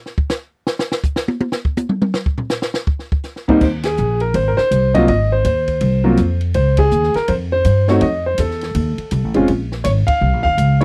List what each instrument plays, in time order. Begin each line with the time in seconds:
0.06 snare
0.18 kick
0.29 snare, hi-hat pedal
0.67 snare
0.79 snare
0.92 snare
1.03 kick, hi-hat pedal
1.16 snare
1.28 high tom
1.41 high tom
1.52 snare
1.65 kick
1.77 hi-hat pedal, high tom
1.89 mid tom
2.02 mid tom
2.14 snare
2.26 kick
2.38 floor tom
2.49 snare, hi-hat pedal
2.62 snare
2.74 snare
2.87 kick
2.99 snare
3.12 kick
3.23 snare, hi-hat pedal
3.36 snare
3.48 grand piano G#2 G3 A#3 C4 D#4, muted upright bass stroke, kick
3.61 upright bass D#2, grand piano C5, kick, crash
3.83 grand piano G#4, snare, ride
3.97 upright bass A#1, hi-hat pedal
4.20 grand piano A#4, ride
4.34 upright bass G#1, grand piano C5, kick, ride
4.48 grand piano A#4
4.57 grand piano C5, muted upright bass stroke, snare
4.71 upright bass C2, kick, hi-hat pedal, ride
4.94 grand piano F#3 A#3 C4 F4 D#5, kick, ride
5.08 upright bass G#1, grand piano D#5, kick, ride
5.32 grand piano C5
5.45 upright bass D#2, grand piano C5, kick, hi-hat pedal, ride
5.68 kick, ride
5.81 upright bass C2, kick, ride
6.04 grand piano F#3 A#3 C4 F4
6.17 upright bass F2, kick, hi-hat pedal, ride
6.41 ride
6.54 upright bass C#2, grand piano C5, kick, ride
6.77 grand piano G#4, kick, ride
6.91 upright bass D#2, hi-hat pedal
7.03 snare
7.14 grand piano A#4, muted upright bass stroke, snare, ride
7.28 upright bass F2, grand piano C5, kick, ride
7.52 grand piano C5
7.65 upright bass G2, kick, hi-hat pedal, ride
7.88 grand piano A3 C4 D#4 F#4 C#5, snare
8.01 upright bass F2, grand piano D#5, kick, ride
8.26 grand piano C5
8.38 upright bass E2, grand piano A4, kick, hi-hat pedal, ride
8.51 snare
8.61 snare, ride
8.75 upright bass D#2, kick, ride
8.98 muted upright bass stroke, ride
9.11 upright bass C2, kick, hi-hat pedal, ride
9.24 upright bass A1
9.34 upright bass F1, grand piano G#3 C4 C#4 F4, ride
9.48 upright bass A#1, kick, ride
9.72 snare
9.84 upright bass G#1, grand piano C#5, kick, hi-hat pedal, ride
10.07 grand piano F5, muted upright bass stroke, kick, ride
10.21 upright bass C2
10.33 upright bass A#1
10.43 upright bass G#1, grand piano F5, kick
10.58 upright bass C#2, kick, hi-hat pedal, ride
10.81 grand piano G3 C#5, ride